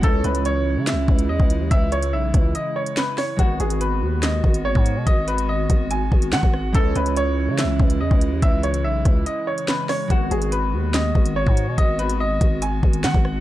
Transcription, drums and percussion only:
0.03 kick, closed hi-hat
0.24 closed hi-hat
0.35 closed hi-hat
0.45 closed hi-hat
0.87 snare, clap, closed hi-hat
1.08 kick
1.19 closed hi-hat
1.40 kick
1.50 closed hi-hat
1.71 kick, closed hi-hat
1.92 closed hi-hat
2.03 closed hi-hat
2.34 kick, cross-stick, closed hi-hat
2.55 closed hi-hat
2.86 closed hi-hat
2.97 snare, clap
3.18 cross-stick, snare, open hi-hat
3.39 kick, closed hi-hat
3.60 closed hi-hat
3.70 closed hi-hat
3.81 closed hi-hat
4.23 snare, clap, closed hi-hat
4.44 kick
4.54 closed hi-hat
4.75 kick
4.86 closed hi-hat
5.07 kick, closed hi-hat
5.28 closed hi-hat
5.38 closed hi-hat
5.70 kick, closed hi-hat
5.91 closed hi-hat
6.12 kick
6.22 closed hi-hat
6.33 snare, clap
6.43 kick
6.54 cross-stick
6.75 kick, closed hi-hat
6.96 closed hi-hat
7.06 closed hi-hat
7.17 closed hi-hat
7.58 snare, clap, closed hi-hat
7.80 kick
7.90 closed hi-hat
8.11 kick
8.21 closed hi-hat
8.42 kick, closed hi-hat
8.63 closed hi-hat
8.74 closed hi-hat
9.05 kick, cross-stick, closed hi-hat
9.26 closed hi-hat
9.58 closed hi-hat
9.68 snare, clap
9.89 cross-stick, snare, open hi-hat
10.10 kick, closed hi-hat
10.31 closed hi-hat
10.42 closed hi-hat
10.52 closed hi-hat
10.94 snare, clap, closed hi-hat
11.15 kick
11.26 closed hi-hat
11.47 kick
11.57 closed hi-hat
11.78 kick, closed hi-hat
11.99 closed hi-hat
12.10 closed hi-hat
12.41 kick, closed hi-hat
12.62 closed hi-hat
12.83 kick
12.93 closed hi-hat
13.04 snare, clap
13.14 kick
13.25 cross-stick

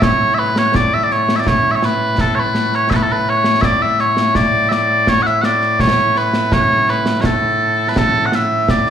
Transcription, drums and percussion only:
0.02 concert bass drum, snare
0.56 snare
0.74 concert bass drum, snare
1.11 snare
1.29 snare
1.47 concert bass drum, snare
1.82 snare
2.18 concert bass drum, snare
2.55 snare
2.72 snare
2.91 concert bass drum, snare
3.44 snare
3.62 concert bass drum, snare
3.99 snare
4.17 snare
4.35 concert bass drum, snare
4.72 snare
5.07 concert bass drum, snare
5.26 snare
5.43 snare
5.62 snare
5.79 concert bass drum, snare
5.97 snare
6.16 snare
6.34 snare
6.52 concert bass drum, snare
6.88 snare
7.06 snare
7.24 concert bass drum, snare
7.96 concert bass drum, snare
8.32 snare
8.68 concert bass drum, snare
8.87 snare

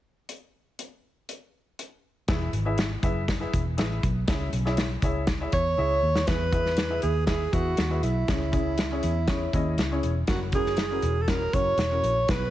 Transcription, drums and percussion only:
0.29 closed hi-hat
0.79 closed hi-hat
1.29 closed hi-hat
1.79 closed hi-hat
2.28 kick, snare, closed hi-hat
2.53 closed hi-hat
2.78 snare, closed hi-hat
3.03 kick, closed hi-hat
3.28 kick, snare, closed hi-hat
3.54 kick, closed hi-hat
3.78 snare, closed hi-hat
4.03 kick, closed hi-hat
4.28 kick, snare, closed hi-hat
4.53 closed hi-hat
4.66 snare
4.77 snare, closed hi-hat
5.02 kick, closed hi-hat
5.27 kick, snare, closed hi-hat
5.52 kick, closed hi-hat
6.16 snare
6.27 kick, snare, closed hi-hat
6.53 kick, closed hi-hat
6.66 snare
6.77 snare, closed hi-hat
7.02 closed hi-hat
7.27 kick, snare, closed hi-hat
7.53 kick, closed hi-hat
7.77 snare, closed hi-hat
8.03 closed hi-hat
8.28 kick, snare, closed hi-hat
8.53 kick, closed hi-hat
8.78 snare, closed hi-hat
9.03 closed hi-hat
9.28 kick, snare, closed hi-hat
9.53 kick, closed hi-hat
9.78 snare, closed hi-hat
10.03 closed hi-hat
10.27 kick, snare, closed hi-hat
10.52 kick, closed hi-hat
10.66 snare
10.77 snare, closed hi-hat
11.02 closed hi-hat
11.28 kick, snare, closed hi-hat
11.53 kick, closed hi-hat
11.78 snare, closed hi-hat
12.04 closed hi-hat
12.28 kick, snare, closed hi-hat

